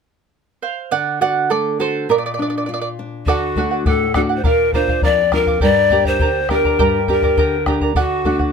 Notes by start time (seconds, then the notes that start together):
0.62 C5 F5
0.91 D3 D5 F#5
1.21 F#4 D5 F#5
1.50 A3 A4 D5
1.79 F#4 A4 C5
2.09 A#2 A#4 D5
2.18 D5
2.26 D5
2.34 D5
2.39 D4 D5
2.50 D5
2.58 D5
2.66 F4 D5
2.74 D5
2.82 D5
2.99 D4
3.26 D3 F#4 A4 D5 F#5, bombo low
3.56 A3 D4 F#4 A4 D5 F#5, bombo low
3.71 D5 F#5
3.85 A2 A4 D5 F#5, bombo low
4.14 A3 D4 F#4 A4 D5 F#5, bombo rim, bombo low
4.29 D5 F#5
4.36 C5
4.44 A#2 A#4 D5 F5, bombo low
4.73 A#3 D4 F4 A#4 C5 D5 F5, bombo low
4.88 D5 F5, bombo low
5.02 F2 A#4 D5 F5, bombo low
5.32 A#3 D4 F4 A#4 D5 F5, bombo rim, bombo low
5.46 D5 F5, bombo low
5.60 G2 G4 A#4 D5 G5 A#5, bombo low
5.90 A#3 D4 G4 A#4 D5 G5 A#5, bombo low
6.04 A#4 C5 D5 A#5, bombo low
6.19 D3 A#4 D5 G5 A#5, bombo low
6.49 A#3 D4 G4 A#4 D5 G5 A#5, bombo rim, bombo low
6.64 A#4 D5 A#5, bombo low
6.79 G2 G4 A#4 D5 G5 A#5, bombo low
7.08 A#3 D4 G4 A#4 D5 G5 A#5, bombo low
7.22 A#4 D5 A#5, bombo low
7.37 D3 A#4 D5 G5 A#5, bombo low
7.66 A#3 D4 G4 A#4 D5 G5 A#5, bombo rim, bombo low
7.81 A#4 D5 A#5, bombo low
7.95 D3 F#4 A4 D5 F#5, bombo low
8.25 A3 D4 F#4 A4 D5 F#5, bombo low
8.39 D5 F#5, bombo low